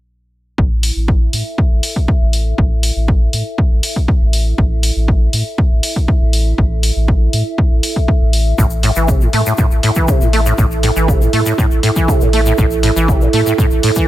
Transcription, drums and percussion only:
0.58 kick
0.83 open hi-hat
1.08 kick
1.33 open hi-hat
1.58 kick
1.83 open hi-hat
1.96 kick
2.08 kick
2.33 open hi-hat
2.58 kick
2.83 open hi-hat
3.08 kick
3.33 open hi-hat
3.58 kick
3.83 open hi-hat
3.96 kick
4.08 kick
4.33 open hi-hat
4.58 kick
4.83 open hi-hat
5.08 kick
5.33 open hi-hat
5.58 kick
5.83 open hi-hat
5.96 kick
6.08 kick
6.33 open hi-hat
6.58 kick
6.83 open hi-hat
7.08 kick
7.33 open hi-hat
7.58 kick
7.83 open hi-hat
7.96 kick
8.08 kick
8.33 open hi-hat
8.58 kick, shaker
8.70 shaker
8.83 open hi-hat
8.96 shaker
9.08 kick, shaker
9.21 shaker
9.33 open hi-hat
9.46 shaker
9.58 kick, shaker
9.71 shaker
9.83 open hi-hat
9.95 kick, shaker
10.08 kick, shaker
10.21 shaker
10.33 open hi-hat
10.46 shaker
10.58 kick, shaker
10.71 shaker
10.83 open hi-hat
10.96 shaker
11.08 kick, shaker
11.22 shaker
11.33 open hi-hat
11.46 shaker
11.58 kick, shaker
11.71 shaker
11.83 open hi-hat
11.96 kick, shaker
12.08 kick, shaker
12.21 shaker
12.33 open hi-hat
12.46 shaker
12.58 kick, shaker
12.71 shaker
12.83 open hi-hat
12.97 shaker
13.08 kick, shaker
13.21 shaker
13.33 open hi-hat
13.46 shaker
13.58 kick, shaker
13.71 shaker
13.83 open hi-hat
13.95 kick, shaker

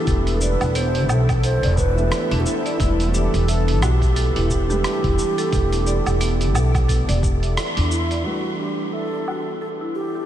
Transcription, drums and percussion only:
0.07 kick, open hi-hat, cabasa
0.27 open hi-hat, cabasa
0.41 cabasa
0.61 open hi-hat, cabasa, low woodblock
0.75 open hi-hat, cabasa
0.95 open hi-hat
1.09 cabasa, low woodblock
1.29 kick, open hi-hat, cabasa, low woodblock
1.43 open hi-hat, cabasa
1.63 open hi-hat
1.78 kick, cabasa
1.98 cabasa
2.12 cross-stick, open hi-hat, cabasa
2.31 open hi-hat
2.46 cabasa
2.66 open hi-hat, cabasa
2.80 kick, open hi-hat, cabasa
3.00 open hi-hat, cabasa
3.14 cabasa
3.34 open hi-hat, cabasa
3.48 open hi-hat, cabasa
3.68 open hi-hat
3.82 cross-stick, cabasa, low woodblock
4.02 kick, open hi-hat, cabasa
4.16 open hi-hat, cabasa
4.36 open hi-hat
4.50 kick, cabasa
4.70 cabasa
4.84 cross-stick, open hi-hat, cabasa
5.04 kick, open hi-hat
5.19 cabasa
5.38 open hi-hat, cabasa
5.53 kick, open hi-hat, cabasa
5.72 open hi-hat, cabasa
5.87 cabasa
6.06 open hi-hat, cabasa, low woodblock
6.21 open hi-hat, cabasa
6.41 open hi-hat, cabasa
6.55 cabasa, low woodblock
6.75 kick, open hi-hat, cabasa, low woodblock
6.89 kick, open hi-hat, cabasa
7.09 open hi-hat, cabasa
7.23 kick, cabasa
7.43 open hi-hat, cabasa
7.57 cross-stick, open hi-hat, cabasa
7.77 open hi-hat
7.92 cabasa
8.11 open hi-hat, cabasa
9.28 low woodblock

